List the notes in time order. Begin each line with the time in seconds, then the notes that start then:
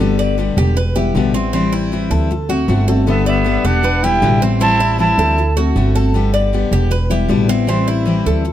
Already playing: G1 A4
0.00 D3 G3 B3 G4
0.19 D5
0.38 D3 G3 B3 G4
0.57 E1 G4
0.76 B4, muted steel-string acoustic guitar stroke
0.96 G3 B3 E4 G4
1.15 A1 B2 D3 G3 B3 E4
1.34 G3 B3 C4 E4
1.53 E3 G3 C4 E4
1.72 E4
1.92 E3 G3 C4 E4
2.10 D2 A4
2.31 muted steel-string acoustic guitar stroke
2.49 A3 C4 F#4
2.68 G1 D3 A3 C4 F#4
2.88 A3 C4 F#4 A4
3.07 D3 G3 B3 G4 E5
3.26 B3 D5 E5
3.44 D3 G3 B3 G4
3.64 E1 D4 G4 F#5
3.83 B4, muted steel-string acoustic guitar stroke
4.03 G3 B3 E4 G4 G5
4.22 A1 B2 D3 G3 B3 E4
4.41 G3 B3 C4 E4
4.60 E3 G3 C4 E4 A5
4.80 E4
4.98 E3 G3 C4 E4 A5
5.18 D2 A4
5.38 muted steel-string acoustic guitar stroke
5.56 A3 C4 F#4
5.76 G1 D3 A3 C4 F#4
5.95 A3 C4 F#4 A4
6.14 D3 G3 B3 G4
6.34 D5
6.53 D3 G3 B3 G4
6.71 E1 G4
6.91 B4, muted steel-string acoustic guitar stroke
7.10 G3 B3 E4 G4
7.29 A1 B2 D3 G3 B3 E4
7.48 G3 B3 C4 E4
7.67 E3 G3 C4 E4
7.88 E4
8.06 E3 G3 C4 E4
8.26 D2 A4
8.45 muted steel-string acoustic guitar stroke